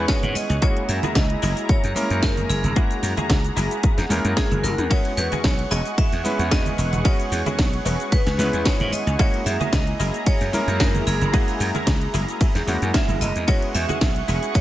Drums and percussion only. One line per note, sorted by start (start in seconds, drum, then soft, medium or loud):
0.08 kick loud
0.08 snare loud
0.08 closed hi-hat medium
0.08 shaker soft
0.23 closed hi-hat soft
0.23 muted conga medium
0.23 low conga medium
0.23 shaker soft
0.35 open hi-hat loud
0.35 muted conga medium
0.35 shaker medium
0.50 closed hi-hat soft
0.50 shaker soft
0.62 kick loud
0.62 closed hi-hat loud
0.62 shaker soft
0.77 closed hi-hat soft
0.89 open hi-hat loud
0.89 shaker medium
1.03 closed hi-hat soft
1.03 muted conga medium
1.03 low conga medium
1.03 shaker soft
1.15 kick loud
1.15 snare loud
1.15 closed hi-hat medium
1.15 shaker soft
1.30 closed hi-hat soft
1.42 open hi-hat loud
1.42 high conga medium
1.42 shaker medium
1.57 closed hi-hat soft
1.57 shaker soft
1.69 kick loud
1.69 closed hi-hat loud
1.69 shaker soft
1.84 closed hi-hat soft
1.84 shaker soft
1.96 open hi-hat loud
1.96 high conga medium
1.96 shaker medium
2.10 closed hi-hat soft
2.10 shaker soft
2.23 kick loud
2.23 snare loud
2.23 closed hi-hat medium
2.23 shaker soft
2.37 closed hi-hat soft
2.37 muted conga medium
2.37 low conga medium
2.37 shaker soft
2.49 open hi-hat loud
2.49 shaker medium
2.63 closed hi-hat soft
2.63 low conga medium
2.63 shaker soft
2.76 kick loud
2.76 closed hi-hat medium
2.76 shaker soft
2.91 closed hi-hat soft
2.91 shaker soft
3.03 open hi-hat loud
3.03 high conga medium
3.03 shaker medium
3.17 closed hi-hat soft
3.17 muted conga medium
3.17 low conga loud
3.17 shaker soft
3.30 kick loud
3.30 snare loud
3.30 closed hi-hat medium
3.30 shaker soft
3.44 closed hi-hat soft
3.44 shaker soft
3.56 open hi-hat loud
3.56 high conga medium
3.56 shaker medium
3.71 closed hi-hat soft
3.71 shaker soft
3.83 kick loud
3.83 closed hi-hat loud
3.83 shaker soft
3.98 snare soft
3.98 closed hi-hat soft
3.98 shaker soft
4.10 open hi-hat loud
4.10 high conga medium
4.10 shaker medium
4.25 closed hi-hat soft
4.25 shaker soft
4.37 kick loud
4.37 snare loud
4.37 closed hi-hat loud
4.37 shaker soft
4.51 closed hi-hat soft
4.51 muted conga medium
4.51 low conga medium
4.51 shaker soft
4.64 open hi-hat loud
4.64 high tom medium
4.64 muted conga medium
4.64 shaker medium
4.78 closed hi-hat soft
4.78 mid tom medium
4.78 shaker soft
4.91 kick loud
4.91 closed hi-hat loud
4.91 ride medium
4.91 shaker soft
5.05 closed hi-hat soft
5.17 open hi-hat loud
5.17 shaker medium
5.32 closed hi-hat soft
5.32 muted conga medium
5.32 low conga loud
5.32 shaker soft
5.44 kick loud
5.44 snare loud
5.44 closed hi-hat loud
5.44 ride medium
5.44 shaker soft
5.59 closed hi-hat soft
5.71 open hi-hat loud
5.71 high conga medium
5.71 shaker medium
5.86 closed hi-hat soft
5.86 shaker soft
5.98 kick loud
5.98 closed hi-hat medium
5.98 ride medium
5.98 shaker soft
6.12 closed hi-hat soft
6.12 shaker soft
6.25 open hi-hat loud
6.25 high conga medium
6.25 shaker medium
6.39 closed hi-hat soft
6.39 shaker soft
6.51 kick loud
6.51 snare loud
6.51 closed hi-hat loud
6.51 ride medium
6.51 shaker soft
6.66 closed hi-hat soft
6.66 muted conga medium
6.66 low conga medium
6.66 shaker soft
6.78 open hi-hat loud
6.78 shaker medium
6.93 closed hi-hat soft
6.93 low conga loud
6.93 shaker soft
7.05 kick loud
7.05 closed hi-hat medium
7.05 ride medium
7.05 shaker soft
7.20 closed hi-hat soft
7.20 shaker soft
7.32 open hi-hat loud
7.32 shaker medium
7.46 closed hi-hat soft
7.46 muted conga medium
7.46 low conga medium
7.46 shaker soft
7.59 kick loud
7.59 snare loud
7.59 closed hi-hat medium
7.59 ride medium
7.59 shaker soft
7.73 closed hi-hat soft
7.85 open hi-hat loud
7.85 high conga medium
7.85 shaker medium
8.00 closed hi-hat soft
8.00 shaker soft
8.12 kick loud
8.12 closed hi-hat medium
8.12 ride medium
8.12 shaker soft
8.27 snare soft
8.27 closed hi-hat soft
8.27 shaker soft
8.39 open hi-hat loud
8.39 high conga medium
8.39 shaker medium
8.53 closed hi-hat soft
8.53 shaker soft
8.65 kick loud
8.65 snare loud
8.65 closed hi-hat medium
8.65 ride medium
8.65 shaker soft
8.80 closed hi-hat soft
8.80 muted conga medium
8.80 low conga medium
8.80 shaker soft
8.92 open hi-hat loud
8.92 muted conga medium
8.92 shaker medium
9.07 closed hi-hat soft
9.07 shaker soft
9.19 kick loud
9.19 closed hi-hat medium
9.19 ride medium
9.19 shaker soft
9.34 closed hi-hat soft
9.46 open hi-hat loud
9.46 shaker medium
9.60 closed hi-hat soft
9.60 muted conga medium
9.60 low conga loud
9.60 shaker soft
9.73 kick loud
9.73 snare loud
9.73 closed hi-hat medium
9.73 ride medium
9.73 shaker soft
9.87 closed hi-hat soft
10.00 open hi-hat loud
10.00 high conga medium
10.00 shaker medium
10.14 closed hi-hat soft
10.14 shaker soft
10.26 kick loud
10.26 closed hi-hat medium
10.26 ride medium
10.26 shaker soft
10.41 closed hi-hat soft
10.41 shaker soft
10.53 open hi-hat loud
10.53 high conga loud
10.53 shaker medium
10.68 closed hi-hat soft
10.68 shaker soft
10.80 kick loud
10.80 snare loud
10.80 closed hi-hat medium
10.80 ride medium
10.80 shaker soft
10.94 closed hi-hat soft
10.94 muted conga medium
10.94 low conga medium
10.94 shaker soft
11.07 open hi-hat loud
11.07 shaker medium
11.21 closed hi-hat soft
11.21 low conga loud
11.21 shaker soft
11.34 kick loud
11.34 closed hi-hat medium
11.34 ride medium
11.34 shaker soft
11.48 closed hi-hat soft
11.48 shaker soft
11.60 open hi-hat loud
11.60 shaker medium
11.74 closed hi-hat soft
11.74 muted conga medium
11.74 low conga medium
11.74 shaker soft
11.87 kick loud
11.87 snare loud
11.87 closed hi-hat medium
11.87 ride medium
11.87 shaker soft
12.01 closed hi-hat soft
12.14 open hi-hat loud
12.14 high conga medium
12.14 shaker medium
12.28 closed hi-hat soft
12.28 shaker soft
12.41 kick loud
12.41 closed hi-hat medium
12.41 ride medium
12.41 shaker soft
12.55 snare soft
12.55 closed hi-hat soft
12.55 shaker soft
12.68 open hi-hat loud
12.68 high conga loud
12.68 shaker medium
12.82 closed hi-hat soft
12.82 shaker soft
12.94 kick loud
12.94 snare loud
12.94 closed hi-hat medium
12.94 ride medium
12.94 shaker soft
13.08 closed hi-hat soft
13.08 muted conga medium
13.08 low conga loud
13.08 shaker soft
13.21 open hi-hat loud
13.21 muted conga medium
13.21 shaker medium
13.36 closed hi-hat soft
13.36 shaker soft
13.48 kick loud
13.48 closed hi-hat medium
13.48 ride medium
13.48 shaker soft
13.62 closed hi-hat soft
13.75 open hi-hat loud
13.75 shaker medium
13.89 closed hi-hat soft
13.89 muted conga medium
13.89 low conga medium
13.89 shaker soft
14.01 kick loud
14.01 snare loud
14.01 closed hi-hat medium
14.01 ride medium
14.01 shaker soft
14.16 closed hi-hat soft
14.28 open hi-hat loud
14.28 high conga medium
14.28 shaker medium
14.43 closed hi-hat soft
14.43 shaker soft
14.55 kick loud
14.55 closed hi-hat medium
14.55 ride medium
14.55 shaker soft